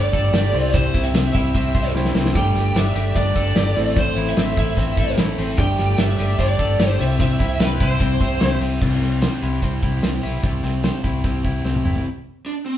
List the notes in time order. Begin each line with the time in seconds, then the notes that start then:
Already playing: G3 A3 D4 G4 A4 D5 G5 D6
0.13 G1 A3 D4 G4 A4, kick, closed hi-hat
0.32 G1 G3 A3 D4 G4, snare, closed hi-hat
0.52 C2 C3 C4 E4 G4 C5 E5 E6, open hi-hat
0.56 C4
0.73 C3 G3 C4 E4 G4 C5, kick, closed hi-hat
0.93 C2 C4 E4 G4, kick, snare, closed hi-hat
1.04 E5
1.13 C2 G3 C4 E4, snare, closed hi-hat
1.17 G4
1.34 C2 E4 G4 E5, kick, closed hi-hat
1.38 C4
1.54 C2 C3 G3 C4 E4 G4, kick, closed hi-hat
1.74 C2 C4 E4 G4 C5, kick, closed hi-hat
1.94 C2 G3 C4 E4 G4 C5 C6, snare
2.05 snare
2.14 C2 C4 E4 G4 G5, snare
2.26 snare
2.34 G1 G3 A3 D4 G4 A4 D5 G5 D6, kick, splash
2.54 G1 A3 D4 G4, snare, closed hi-hat
2.74 G1 G3 A3 D4 G4 E5, snare, closed hi-hat
2.94 G1 A3 D4 G4, closed hi-hat
3.15 G1 G3 A3 D4 G4 D5, kick, closed hi-hat
3.36 G1 A3 D4 G4 A4, kick, closed hi-hat
3.56 G1 G3 A3 D4 G4, snare, closed hi-hat
3.75 A1 A2 A3 C4 E4 A4 C5 E5 C6, open hi-hat
3.79 A3
3.96 A2 E3 A3 C4 E4 C5, kick, closed hi-hat
4.16 A1 C4 E4, closed hi-hat
4.20 A3
4.29 E5
4.37 A1 E3 A3 C4 E4, snare, closed hi-hat
4.57 A1 A3 C4 E4 E5, kick, closed hi-hat
4.76 A1 A2 E3 A3 C4 E4, kick, closed hi-hat
4.97 A1 A3 C4 E4 A4, kick, closed hi-hat
5.17 A1 E3 A3 C4 E4, snare, closed hi-hat
5.37 A1 A3 C4 E4, open hi-hat
5.57 G1 G3 A3 D4 G4 A4 D5 G5 D6, kick, closed hi-hat
5.78 G1 A3 D4 G4, snare, closed hi-hat
5.98 G1 G3 A3 D4 G4 E5, snare, closed hi-hat
6.19 G1 A3 D4 G4, closed hi-hat
6.39 G1 G3 A3 D4 G4 D5, kick, closed hi-hat
6.59 G1 A3 D4 G4 A4, kick, closed hi-hat
6.79 G1 G3 A3 D4 G4, snare, closed hi-hat
6.83 G4
6.88 C5
6.99 C2 C3 C4 E4 G4 C5 E5 E6, open hi-hat
7.03 C4
7.19 C3 G3 C4 E4 G4 E5, kick, closed hi-hat
7.39 C2 C4 E4 G4, kick, snare, closed hi-hat
7.60 C2 G3 C4 E4 G4 B4, snare, closed hi-hat
7.80 C2 C4 E4 G4 C5, kick, closed hi-hat
8.00 C2 C3 G3 C4 E4 G4, kick, closed hi-hat
8.20 C2 C4 E4 G4 C5, kick, closed hi-hat
8.40 C2 G3 C4 E4 G4, snare, closed hi-hat
8.61 C2 C4 E4 G4, open hi-hat
8.81 C2 C3 G3 C4 E4 G4, kick, crash
9.01 C2 C4 E4 G4, closed hi-hat
9.21 G3 C4 E4 G4 C5, snare, closed hi-hat
9.42 C2 C4 E4 G4, closed hi-hat
9.61 C2 C3 G3 C4 E4 G4, kick, closed hi-hat
9.82 C2 C4 E4 G4, kick, closed hi-hat
10.02 C2 G3 C4 E4 G4, snare, closed hi-hat
10.22 B1 C4 E4 G4, open hi-hat
10.42 C2 C3 G3 C4 E4 G4, kick, closed hi-hat
10.63 C2 C4 E4 G4, snare, closed hi-hat
10.83 G3 C4 E4 G4 C5, snare, closed hi-hat
11.03 C2 C4 E4 G4, kick, closed hi-hat
11.24 C2 C3 G3 C4 E4 G4, kick, closed hi-hat
11.44 C2 C4 E4 G4, kick, closed hi-hat
11.64 C2 G3 C4 E4 G4, snare
11.75 high tom
11.84 F#1 C4 E4 G4, mid tom
11.96 floor tom
12.46 D4
12.66 C4